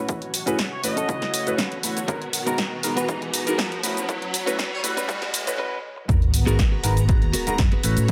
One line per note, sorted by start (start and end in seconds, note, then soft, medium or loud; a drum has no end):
0.00 0.33 C#4 medium
0.00 0.34 F#4 medium
0.00 3.80 F#4 medium
0.00 0.34 B4 loud
0.00 2.07 C#5 medium
0.00 riser medium
0.08 0.44 A1 loud
0.08 0.16 A3 medium
0.08 0.16 C#4 medium
0.08 0.17 E4 medium
0.08 0.17 F#4 medium
0.08 0.17 B4 medium
0.08 kick loud
0.08 closed hi-hat medium
0.08 shaker soft
0.22 closed hi-hat soft
0.34 open hi-hat loud
0.34 shaker medium
0.46 0.57 A1 loud
0.46 0.58 A3 medium
0.46 0.72 C#4 medium
0.46 0.58 C#4 medium
0.46 0.58 E4 medium
0.46 0.72 F#4 medium
0.46 0.58 F#4 medium
0.46 0.72 G#4 loud
0.46 0.58 B4 loud
0.46 closed hi-hat medium
0.46 shaker soft
0.59 kick loud
0.59 snare loud
0.59 closed hi-hat medium
0.59 shaker soft
0.72 0.81 C#5 medium
0.83 1.05 A1 medium
0.83 0.91 A3 medium
0.83 0.91 C#4 medium
0.83 0.92 E4 medium
0.83 0.92 F#4 medium
0.83 0.92 B4 loud
0.83 1.54 D#5 loud
0.83 open hi-hat loud
0.83 shaker medium
0.96 1.08 C#4 medium
0.96 1.09 F#4 medium
0.96 1.09 A4 loud
0.96 closed hi-hat medium
0.96 shaker soft
1.08 1.20 A1 medium
1.08 1.43 A3 medium
1.08 1.44 C#4 medium
1.08 1.44 E4 medium
1.08 1.44 F#4 medium
1.08 1.44 B4 loud
1.08 kick loud
1.08 closed hi-hat medium
1.08 shaker soft
1.21 muted clean electric guitar stroke loud
1.21 snare soft
1.21 closed hi-hat soft
1.33 muted clean electric guitar stroke soft
1.33 open hi-hat loud
1.33 shaker medium
1.47 1.57 F#1 medium
1.47 1.58 A3 medium
1.47 1.58 C#4 medium
1.47 1.58 E4 medium
1.47 1.58 F#4 medium
1.47 1.58 B4 medium
1.47 closed hi-hat soft
1.47 shaker soft
1.58 1.78 C#4 medium
1.58 1.78 F#4 medium
1.58 1.78 B4 loud
1.58 kick loud
1.58 snare loud
1.58 closed hi-hat medium
1.58 shaker soft
1.72 2.06 E2 medium
1.72 closed hi-hat soft
1.83 1.96 A3 medium
1.83 1.96 C#4 medium
1.83 1.96 E4 medium
1.83 1.96 F#4 medium
1.83 1.96 B4 medium
1.83 open hi-hat loud
1.83 shaker medium
1.97 muted clean electric guitar stroke soft
1.97 closed hi-hat medium
1.97 shaker soft
2.08 2.44 G#1 loud
2.08 2.16 G#3 medium
2.08 2.28 B3 loud
2.08 2.16 B3 medium
2.08 3.82 B3 medium
2.08 2.16 D#4 medium
2.08 2.28 F#4 loud
2.08 2.17 F#4 medium
2.08 2.17 A#4 medium
2.08 2.28 A#4 loud
2.08 3.82 A#5 loud
2.08 kick loud
2.08 closed hi-hat medium
2.08 shaker soft
2.22 closed hi-hat soft
2.33 open hi-hat loud
2.33 shaker medium
2.46 2.57 G#1 loud
2.46 2.58 G#3 medium
2.46 2.72 B3 medium
2.46 2.58 B3 medium
2.46 2.58 D#4 medium
2.46 2.72 F#4 medium
2.46 2.58 F#4 medium
2.46 2.58 A#4 loud
2.46 2.72 A#4 loud
2.46 closed hi-hat soft
2.46 shaker soft
2.58 kick loud
2.58 snare loud
2.58 closed hi-hat medium
2.58 shaker soft
2.83 3.19 G#1 medium
2.83 2.91 G#3 loud
2.83 2.91 B3 medium
2.83 2.91 D#4 medium
2.83 2.92 F#4 medium
2.83 2.92 A#4 loud
2.83 open hi-hat loud
2.83 shaker medium
2.96 3.08 B3 medium
2.96 3.09 F#4 medium
2.96 3.09 B4 loud
2.96 closed hi-hat medium
2.96 shaker soft
3.08 3.44 G#3 loud
3.08 3.44 B3 medium
3.08 3.44 D#4 medium
3.08 3.44 F#4 medium
3.08 3.44 A#5 loud
3.08 kick loud
3.08 closed hi-hat medium
3.08 shaker soft
3.21 3.32 D#2 medium
3.21 muted clean electric guitar stroke loud
3.21 closed hi-hat soft
3.33 muted clean electric guitar stroke soft
3.33 open hi-hat loud
3.33 shaker medium
3.46 3.58 G#3 medium
3.46 3.58 B3 medium
3.46 3.58 D#4 medium
3.46 3.58 F#4 medium
3.46 3.58 A#4 loud
3.46 closed hi-hat medium
3.46 shaker soft
3.58 3.70 F#2 medium
3.58 3.78 B3 medium
3.58 3.78 F#4 medium
3.58 3.78 A#4 loud
3.58 kick loud
3.58 snare loud
3.58 closed hi-hat medium
3.58 shaker soft
3.72 closed hi-hat soft
3.83 3.95 A1 loud
3.83 3.96 A3 medium
3.83 4.33 C#4 medium
3.83 3.96 C#4 medium
3.83 3.96 E4 medium
3.83 3.96 F#4 medium
3.83 4.34 F#4 medium
3.83 5.57 F#4 medium
3.83 3.96 B4 medium
3.83 4.34 B4 loud
3.83 5.57 C#5 medium
3.83 5.57 B5 medium
3.83 open hi-hat loud
3.83 shaker medium
3.96 4.07 A2 medium
3.96 closed hi-hat medium
3.96 shaker soft
4.08 4.44 A1 loud
4.08 4.16 A3 medium
4.08 4.16 C#4 medium
4.08 4.16 E4 medium
4.08 4.17 F#4 medium
4.08 4.17 B4 medium
4.08 kick loud
4.08 closed hi-hat medium
4.08 shaker soft
4.22 closed hi-hat soft
4.34 open hi-hat loud
4.34 shaker medium
4.46 4.57 A1 loud
4.46 4.58 A3 medium
4.46 4.72 C#4 medium
4.46 4.58 C#4 medium
4.46 4.58 E4 medium
4.46 4.72 F#4 medium
4.46 4.58 F#4 medium
4.46 4.72 B4 loud
4.46 4.58 B4 loud
4.46 closed hi-hat soft
4.46 shaker soft
4.59 kick loud
4.59 snare loud
4.59 closed hi-hat medium
4.59 shaker soft
4.72 4.81 C#5 medium
4.83 5.05 A1 medium
4.83 4.91 A3 loud
4.83 4.91 C#4 medium
4.83 4.91 E4 medium
4.83 4.92 F#4 medium
4.83 4.92 B4 loud
4.83 open hi-hat loud
4.83 shaker medium
4.97 5.09 C#4 medium
4.97 5.09 F#4 medium
4.97 5.09 B4 loud
4.97 closed hi-hat medium
4.97 shaker soft
5.08 5.43 A3 medium
5.08 5.44 C#4 medium
5.08 5.44 E4 medium
5.08 5.44 F#4 medium
5.08 5.44 B4 loud
5.08 kick loud
5.08 closed hi-hat medium
5.08 shaker soft
5.22 muted clean electric guitar stroke loud
5.22 snare soft
5.22 closed hi-hat soft
5.33 muted clean electric guitar stroke soft
5.33 open hi-hat loud
5.33 shaker medium
5.46 5.58 A3 medium
5.46 5.58 C#4 medium
5.46 5.58 E4 medium
5.46 5.58 F#4 medium
5.46 5.58 B4 loud
5.46 closed hi-hat medium
5.46 shaker soft
5.58 5.78 C#4 medium
5.58 5.78 F#4 medium
5.58 5.78 B4 loud
5.96 muted clean electric guitar stroke soft
6.08 6.44 G#1 loud
6.08 6.16 G#3 medium
6.08 6.16 B3 medium
6.08 7.82 B3 medium
6.08 6.16 D#4 medium
6.08 6.16 F#4 medium
6.08 8.12 F#4 medium
6.08 6.17 A#4 medium
6.08 7.82 A#5 loud
6.08 kick loud
6.08 closed hi-hat medium
6.08 sub drop medium
6.08 shaker soft
6.22 closed hi-hat soft
6.34 open hi-hat loud
6.34 shaker medium
6.46 6.57 G#1 loud
6.46 6.58 G#3 medium
6.46 6.58 B3 loud
6.46 6.58 B3 medium
6.46 6.58 D#4 medium
6.46 6.58 F#4 medium
6.46 6.59 F#4 loud
6.46 6.59 G#4 loud
6.46 6.58 A#4 loud
6.46 6.59 A#4 loud
6.46 closed hi-hat medium
6.46 shaker soft
6.59 kick loud
6.59 snare loud
6.59 closed hi-hat medium
6.59 shaker soft
6.71 7.03 B3 medium
6.71 7.03 F#4 medium
6.71 7.03 G#4 medium
6.71 7.03 B4 medium
6.83 7.19 G#1 medium
6.83 6.91 G#3 loud
6.83 6.91 B3 medium
6.83 6.91 D#4 medium
6.83 6.91 F#4 medium
6.83 6.92 A#4 loud
6.83 open hi-hat medium
6.83 shaker medium
6.97 closed hi-hat medium
6.97 shaker soft
7.08 7.44 G#3 loud
7.08 7.44 B3 medium
7.08 7.44 D#4 medium
7.08 7.44 F#4 medium
7.08 7.44 A#5 loud
7.08 kick loud
7.08 closed hi-hat medium
7.08 shaker soft
7.22 7.32 D#2 medium
7.22 closed hi-hat soft
7.33 7.53 B3 loud
7.33 7.53 F#4 loud
7.33 7.53 G#4 loud
7.33 7.53 A#4 loud
7.33 open hi-hat loud
7.33 shaker medium
7.47 7.58 G#3 medium
7.47 7.58 B3 medium
7.47 7.58 D#4 medium
7.47 7.58 F#4 medium
7.47 7.58 A#4 medium
7.47 muted fingered electric bass stroke soft
7.47 closed hi-hat medium
7.47 shaker soft
7.58 7.70 F#2 medium
7.58 kick loud
7.58 snare loud
7.58 closed hi-hat medium
7.58 shaker soft
7.72 7.83 B3 loud
7.72 7.83 F#4 medium
7.72 7.84 G#4 medium
7.72 7.84 B4 medium
7.72 closed hi-hat soft
7.83 7.95 A1 loud
7.83 7.96 A3 medium
7.83 8.12 C#4 medium
7.83 7.96 C#4 medium
7.83 7.96 E4 medium
7.83 8.12 F#4 medium
7.83 7.96 F#4 medium
7.83 8.12 A4 medium
7.83 7.96 B4 medium
7.83 8.12 B4 loud
7.83 8.12 C#5 medium
7.83 8.12 B5 medium
7.83 open hi-hat medium
7.83 shaker medium
7.97 8.07 A2 loud
7.97 closed hi-hat medium
7.97 shaker soft
8.08 8.12 A3 medium
8.08 8.12 C#4 medium
8.08 8.12 E4 medium
8.08 closed hi-hat medium